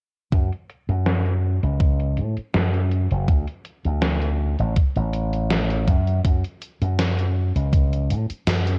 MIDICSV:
0, 0, Header, 1, 4, 480
1, 0, Start_track
1, 0, Tempo, 740741
1, 210, Time_signature, 4, 2, 24, 8
1, 5693, End_track
2, 0, Start_track
2, 0, Title_t, "Slap bass"
2, 0, Program_c, 0, 36
2, 208, Note_on_c, 0, 42, 81
2, 317, Note_off_c, 0, 42, 0
2, 576, Note_on_c, 0, 42, 84
2, 1026, Note_off_c, 0, 42, 0
2, 1057, Note_on_c, 0, 37, 77
2, 1409, Note_on_c, 0, 45, 78
2, 1419, Note_off_c, 0, 37, 0
2, 1518, Note_off_c, 0, 45, 0
2, 1652, Note_on_c, 0, 42, 80
2, 1987, Note_off_c, 0, 42, 0
2, 2018, Note_on_c, 0, 30, 79
2, 2113, Note_off_c, 0, 30, 0
2, 2128, Note_on_c, 0, 38, 84
2, 2237, Note_off_c, 0, 38, 0
2, 2498, Note_on_c, 0, 38, 85
2, 2947, Note_off_c, 0, 38, 0
2, 2977, Note_on_c, 0, 33, 75
2, 3073, Note_off_c, 0, 33, 0
2, 3215, Note_on_c, 0, 33, 88
2, 3809, Note_off_c, 0, 33, 0
2, 3809, Note_on_c, 0, 42, 79
2, 4015, Note_off_c, 0, 42, 0
2, 4049, Note_on_c, 0, 42, 86
2, 4157, Note_off_c, 0, 42, 0
2, 4417, Note_on_c, 0, 42, 89
2, 4866, Note_off_c, 0, 42, 0
2, 4896, Note_on_c, 0, 37, 77
2, 5251, Note_on_c, 0, 45, 79
2, 5260, Note_off_c, 0, 37, 0
2, 5358, Note_off_c, 0, 45, 0
2, 5490, Note_on_c, 0, 42, 79
2, 5693, Note_off_c, 0, 42, 0
2, 5693, End_track
3, 0, Start_track
3, 0, Title_t, "Muted slap bass strokes"
3, 1539, Note_on_c, 9, 29, 37
3, 1603, Note_off_c, 9, 29, 0
3, 5379, Note_on_c, 9, 29, 37
3, 5444, Note_off_c, 9, 29, 0
3, 5693, End_track
4, 0, Start_track
4, 0, Title_t, "Drums"
4, 208, Note_on_c, 9, 36, 103
4, 211, Note_on_c, 9, 42, 87
4, 273, Note_off_c, 9, 36, 0
4, 275, Note_off_c, 9, 42, 0
4, 339, Note_on_c, 9, 42, 36
4, 404, Note_off_c, 9, 42, 0
4, 451, Note_on_c, 9, 42, 60
4, 516, Note_off_c, 9, 42, 0
4, 576, Note_on_c, 9, 42, 35
4, 641, Note_off_c, 9, 42, 0
4, 689, Note_on_c, 9, 38, 104
4, 689, Note_on_c, 9, 42, 84
4, 753, Note_off_c, 9, 38, 0
4, 753, Note_off_c, 9, 42, 0
4, 816, Note_on_c, 9, 42, 36
4, 881, Note_off_c, 9, 42, 0
4, 1057, Note_on_c, 9, 42, 35
4, 1122, Note_off_c, 9, 42, 0
4, 1167, Note_on_c, 9, 36, 100
4, 1169, Note_on_c, 9, 42, 83
4, 1232, Note_off_c, 9, 36, 0
4, 1233, Note_off_c, 9, 42, 0
4, 1295, Note_on_c, 9, 42, 36
4, 1360, Note_off_c, 9, 42, 0
4, 1407, Note_on_c, 9, 42, 58
4, 1472, Note_off_c, 9, 42, 0
4, 1535, Note_on_c, 9, 42, 35
4, 1600, Note_off_c, 9, 42, 0
4, 1647, Note_on_c, 9, 38, 107
4, 1647, Note_on_c, 9, 42, 90
4, 1712, Note_off_c, 9, 38, 0
4, 1712, Note_off_c, 9, 42, 0
4, 1774, Note_on_c, 9, 42, 36
4, 1839, Note_off_c, 9, 42, 0
4, 1889, Note_on_c, 9, 42, 58
4, 1953, Note_off_c, 9, 42, 0
4, 2015, Note_on_c, 9, 42, 35
4, 2079, Note_off_c, 9, 42, 0
4, 2128, Note_on_c, 9, 36, 104
4, 2128, Note_on_c, 9, 42, 86
4, 2192, Note_off_c, 9, 36, 0
4, 2192, Note_off_c, 9, 42, 0
4, 2253, Note_on_c, 9, 42, 38
4, 2318, Note_off_c, 9, 42, 0
4, 2366, Note_on_c, 9, 42, 63
4, 2431, Note_off_c, 9, 42, 0
4, 2494, Note_on_c, 9, 42, 35
4, 2559, Note_off_c, 9, 42, 0
4, 2605, Note_on_c, 9, 38, 114
4, 2605, Note_on_c, 9, 42, 87
4, 2670, Note_off_c, 9, 38, 0
4, 2670, Note_off_c, 9, 42, 0
4, 2734, Note_on_c, 9, 42, 37
4, 2798, Note_off_c, 9, 42, 0
4, 2973, Note_on_c, 9, 42, 36
4, 3038, Note_off_c, 9, 42, 0
4, 3086, Note_on_c, 9, 42, 89
4, 3088, Note_on_c, 9, 36, 104
4, 3151, Note_off_c, 9, 42, 0
4, 3152, Note_off_c, 9, 36, 0
4, 3213, Note_on_c, 9, 42, 35
4, 3277, Note_off_c, 9, 42, 0
4, 3326, Note_on_c, 9, 42, 60
4, 3391, Note_off_c, 9, 42, 0
4, 3454, Note_on_c, 9, 42, 37
4, 3519, Note_off_c, 9, 42, 0
4, 3566, Note_on_c, 9, 38, 111
4, 3566, Note_on_c, 9, 42, 90
4, 3631, Note_off_c, 9, 38, 0
4, 3631, Note_off_c, 9, 42, 0
4, 3694, Note_on_c, 9, 42, 36
4, 3759, Note_off_c, 9, 42, 0
4, 3807, Note_on_c, 9, 42, 63
4, 3808, Note_on_c, 9, 36, 94
4, 3872, Note_off_c, 9, 42, 0
4, 3873, Note_off_c, 9, 36, 0
4, 3935, Note_on_c, 9, 42, 36
4, 4000, Note_off_c, 9, 42, 0
4, 4048, Note_on_c, 9, 36, 108
4, 4048, Note_on_c, 9, 42, 87
4, 4113, Note_off_c, 9, 36, 0
4, 4113, Note_off_c, 9, 42, 0
4, 4175, Note_on_c, 9, 42, 37
4, 4240, Note_off_c, 9, 42, 0
4, 4288, Note_on_c, 9, 42, 60
4, 4353, Note_off_c, 9, 42, 0
4, 4417, Note_on_c, 9, 42, 37
4, 4482, Note_off_c, 9, 42, 0
4, 4529, Note_on_c, 9, 38, 111
4, 4529, Note_on_c, 9, 42, 84
4, 4594, Note_off_c, 9, 38, 0
4, 4594, Note_off_c, 9, 42, 0
4, 4658, Note_on_c, 9, 42, 36
4, 4723, Note_off_c, 9, 42, 0
4, 4898, Note_on_c, 9, 42, 36
4, 4963, Note_off_c, 9, 42, 0
4, 5008, Note_on_c, 9, 36, 110
4, 5010, Note_on_c, 9, 42, 83
4, 5073, Note_off_c, 9, 36, 0
4, 5075, Note_off_c, 9, 42, 0
4, 5138, Note_on_c, 9, 42, 35
4, 5203, Note_off_c, 9, 42, 0
4, 5251, Note_on_c, 9, 42, 59
4, 5316, Note_off_c, 9, 42, 0
4, 5378, Note_on_c, 9, 42, 36
4, 5443, Note_off_c, 9, 42, 0
4, 5490, Note_on_c, 9, 38, 114
4, 5490, Note_on_c, 9, 42, 85
4, 5555, Note_off_c, 9, 38, 0
4, 5555, Note_off_c, 9, 42, 0
4, 5618, Note_on_c, 9, 42, 36
4, 5683, Note_off_c, 9, 42, 0
4, 5693, End_track
0, 0, End_of_file